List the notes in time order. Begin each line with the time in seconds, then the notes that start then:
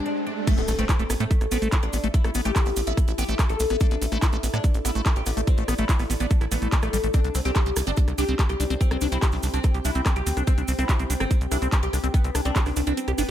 Already playing: riser
0.06 D4
0.26 D4
0.47 A3 E4, kick, closed hi-hat, crash, impact, cabasa
0.58 A1 B3 A4, closed hi-hat, cabasa
0.68 A1 A3, cross-stick, open hi-hat, cabasa
0.79 A1 A3 C4, closed hi-hat, cabasa
0.84 E5
0.89 E4, kick, clap, closed hi-hat, cabasa
0.99 A1 A3, closed hi-hat, cabasa
1.10 A1 B3, cross-stick, open hi-hat, cabasa
1.20 A2 A3, closed hi-hat, cabasa
1.31 A3, kick, closed hi-hat, cabasa
1.41 A1, cross-stick, closed hi-hat, cabasa
1.51 A1 B3 C4, open hi-hat, cabasa
1.62 A1 A3, closed hi-hat, cabasa
1.72 E4, kick, clap, closed hi-hat, cabasa
1.83 A1 D4, cross-stick, closed hi-hat, cabasa
1.93 A1 B3, open hi-hat, cabasa
2.03 A1 A3, closed hi-hat, cabasa
2.14 E4, kick, closed hi-hat, cabasa
2.24 A1 A3, cross-stick, closed hi-hat, cabasa
2.35 A1 B3, open hi-hat, cabasa
2.45 A1 A3 G4, closed hi-hat, cabasa
2.56 E4, kick, cross-stick, clap, closed hi-hat, cabasa
2.66 A1 B3, open hi-hat, cabasa
2.76 A1 B3, open hi-hat, cabasa
2.87 A1 B3 E4, closed hi-hat, cabasa
2.97 A3, kick, cross-stick, closed hi-hat, cabasa
3.08 A1 E4, closed hi-hat, cabasa
3.18 A1 B3 G4, open hi-hat, cabasa
3.29 A1 A3, closed hi-hat, cabasa
3.39 A3, kick, cross-stick, clap, closed hi-hat, cabasa
3.49 A1 A4, closed hi-hat, cabasa
3.60 B1 A3, open hi-hat, cabasa
3.70 A1 B3, cross-stick, closed hi-hat, cabasa
3.80 A3 D4, kick, closed hi-hat, cabasa
3.91 A1 B3, closed hi-hat, cabasa
4.02 A1 A3, open hi-hat, cabasa
4.12 A1 A3 E4, cross-stick, closed hi-hat, cabasa
4.22 E4, kick, clap, closed hi-hat, cabasa
4.32 A1 A3, closed hi-hat, cabasa
4.43 A1 B3, open hi-hat, cabasa
4.49 D5
4.54 A2 A3 D4, cross-stick, closed hi-hat, cabasa
4.64 A3, kick, closed hi-hat, cabasa
4.74 A1, closed hi-hat, cabasa
4.85 A1 B3 E4, cross-stick, open hi-hat, cabasa
4.95 A1 A3, closed hi-hat, cabasa
5.06 E4, kick, clap, closed hi-hat, cabasa
5.16 A1 G4, closed hi-hat, cabasa
5.26 A1 B3, cross-stick, open hi-hat, cabasa
5.37 A1 A3, closed hi-hat, cabasa
5.47 C4, kick, closed hi-hat, cabasa
5.58 A1 A3, closed hi-hat, cabasa
5.68 A1 B3, cross-stick, open hi-hat, cabasa
5.78 A1 A3 E4, closed hi-hat, cabasa
5.89 E4, kick, clap, closed hi-hat, cabasa
5.99 A1 B3, cross-stick, open hi-hat, cabasa
6.10 A1 B3, open hi-hat, cabasa
6.20 A1 B3 D4, closed hi-hat, cabasa
6.31 A3, kick, closed hi-hat, cabasa
6.41 A1 E4, cross-stick, closed hi-hat, cabasa
6.51 A1 A3 B3, open hi-hat, cabasa
6.62 A1 A3, closed hi-hat, cabasa
6.72 A3, kick, clap, closed hi-hat, cabasa
6.82 A1 A3, cross-stick, closed hi-hat, cabasa
6.93 A1 G3, open hi-hat, cabasa
7.03 A1 A3, closed hi-hat, cabasa
7.14 C4 D4, kick, closed hi-hat, cabasa
7.24 C2 D4 G4, closed hi-hat, cabasa
7.35 C2 C4 G5, cross-stick, open hi-hat, cabasa
7.45 C2 C4 G4, closed hi-hat, cabasa
7.55 G4, kick, clap, closed hi-hat, cabasa
7.60 C5
7.66 C2 C4, closed hi-hat, cabasa
7.76 C2 D4, cross-stick, open hi-hat, cabasa
7.87 G1 C4 D4, closed hi-hat, cabasa
7.97 C4, kick, closed hi-hat, cabasa
8.08 C2, cross-stick, closed hi-hat, cabasa
8.18 C2 D4 G4, open hi-hat, cabasa
8.28 C2 C4, closed hi-hat, cabasa
8.39 G4, kick, clap, closed hi-hat, cabasa
8.49 C2 G4, cross-stick, closed hi-hat, cabasa
8.60 C2 D4, open hi-hat, cabasa
8.70 C2 C4 D4, closed hi-hat, cabasa
8.81 C4, kick, closed hi-hat, cabasa
8.91 C2 C4, cross-stick, closed hi-hat, cabasa
9.01 C2 C4 D4, open hi-hat, cabasa
9.12 C2 C4 E4, closed hi-hat, cabasa
9.22 G4, kick, cross-stick, clap, closed hi-hat, cabasa
9.32 C2 D4, open hi-hat, cabasa
9.43 C2 D4, open hi-hat, cabasa
9.54 C2 C4 D4, closed hi-hat, cabasa
9.64 C4, kick, cross-stick, closed hi-hat, cabasa
9.74 C2 G4, closed hi-hat, cabasa
9.85 C2 D4 E4, open hi-hat, cabasa
9.95 C2 C4, closed hi-hat, cabasa
10.06 C4, kick, cross-stick, clap, closed hi-hat, cabasa
10.16 C2 G4, closed hi-hat, cabasa
10.27 D2 C4, open hi-hat, cabasa
10.37 C2 D4, cross-stick, closed hi-hat, cabasa
10.47 C4, kick, closed hi-hat, cabasa
10.58 C2 D4, closed hi-hat, cabasa
10.68 C2 C4, open hi-hat, cabasa
10.79 C2 C4 E4, cross-stick, closed hi-hat, cabasa
10.89 G4, kick, clap, closed hi-hat, cabasa
10.99 C2 C4, closed hi-hat, cabasa
11.08 C2 D4 B4, open hi-hat, cabasa
11.20 G1 C4, cross-stick, closed hi-hat, cabasa
11.31 C4, kick, closed hi-hat, cabasa
11.41 C2, closed hi-hat, cabasa
11.51 C2 D4 E4, cross-stick, open hi-hat, cabasa
11.62 C2 C4, closed hi-hat, cabasa
11.72 G4, kick, clap, closed hi-hat, cabasa
11.83 C2 G4, closed hi-hat, cabasa
11.93 C2 D4, cross-stick, open hi-hat, cabasa
12.04 C2 C4, closed hi-hat, cabasa
12.14 B3, kick, closed hi-hat, cabasa
12.24 C2 C4, closed hi-hat, cabasa
12.35 C2 D4, cross-stick, open hi-hat, cabasa
12.45 C2 C4 D4, closed hi-hat, cabasa
12.56 G4, kick, clap, closed hi-hat, cabasa
12.66 C2 D4, cross-stick, open hi-hat, cabasa
12.76 C2 D4, open hi-hat, cabasa
12.87 C2 C4 D4, closed hi-hat, cabasa
12.97 C4, closed hi-hat, cabasa
13.08 C2 G4, cross-stick, closed hi-hat, cabasa
13.18 G1 B3 D4, open hi-hat, cabasa